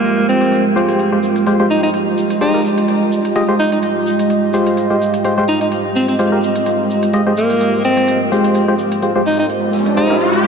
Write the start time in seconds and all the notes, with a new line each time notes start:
Already playing: G#3 A#3 F4 G4 A#4
0.05 closed hi-hat, shaker
0.29 C4, shaker
0.41 closed hi-hat, shaker
0.52 closed hi-hat, shaker
0.76 G#3 F4 G4 C5, shaker
0.89 closed hi-hat, shaker
0.99 closed hi-hat, shaker
1.12 G#3 F4 G4 C5
1.23 shaker
1.36 closed hi-hat, shaker
1.47 G#3 F4 G4 C5 D#5, closed hi-hat, shaker
1.60 G#3 F4 G4 C5
1.70 D#4, shaker
1.83 D#4, closed hi-hat, shaker
1.94 closed hi-hat, shaker
2.18 shaker
2.30 closed hi-hat, shaker
2.41 G#3 D#4 F4 G4 C5, closed hi-hat, shaker
2.54 G#3 F4 G4 A#4
2.65 shaker
2.77 closed hi-hat, shaker
2.88 closed hi-hat, shaker
3.12 shaker
3.24 closed hi-hat, shaker
3.35 G#3 F4 G4 D#5, closed hi-hat, shaker
3.49 G#3 F4 G4 C5
3.59 D#4, shaker
3.72 D#4, closed hi-hat, shaker
3.83 closed hi-hat, shaker
4.07 shaker
4.19 closed hi-hat, shaker
4.30 closed hi-hat, shaker
4.54 G#3 F4 G4 C5, shaker
4.67 closed hi-hat, shaker
4.77 closed hi-hat, shaker
4.90 G#3 F4 G4 C5
5.02 shaker
5.14 closed hi-hat, shaker
5.25 G#3 F4 G4 C5, closed hi-hat, shaker
5.38 G#3 F4 G4 C5
5.48 D#4, shaker
5.61 D#4, closed hi-hat, shaker
5.72 closed hi-hat, shaker
5.96 C4, shaker
6.08 C4, closed hi-hat, shaker
6.19 G#3 F4 G4 C5, closed hi-hat, shaker
6.32 G#3 F4 G4 A#4
6.43 shaker
6.56 closed hi-hat, shaker
6.66 closed hi-hat, shaker
6.90 shaker
7.03 closed hi-hat, shaker
7.13 G#3 F4 G4 D#5, closed hi-hat, shaker
7.26 G#3 F4 G4 C5
7.37 A#3, shaker
7.50 closed hi-hat, shaker
7.61 closed hi-hat, shaker
7.84 C4, shaker
7.97 closed hi-hat, shaker
8.08 closed hi-hat, shaker
8.32 G#3 F4 G4 C5, shaker
8.45 closed hi-hat, shaker
8.54 closed hi-hat, shaker
8.68 G#3 F4 G4 C5
8.79 shaker
8.92 closed hi-hat, shaker
9.02 G#3 F4 G4 C5, closed hi-hat, riser
9.15 G#3 F4 G4 C5
9.26 D#4, open hi-hat
9.39 D#4, closed hi-hat
9.50 closed hi-hat
9.73 open hi-hat
9.86 closed hi-hat
9.97 G#3 D#4 F4 G4 C5, closed hi-hat
10.10 G#3 F4 G4 A#4
10.21 open hi-hat
10.34 closed hi-hat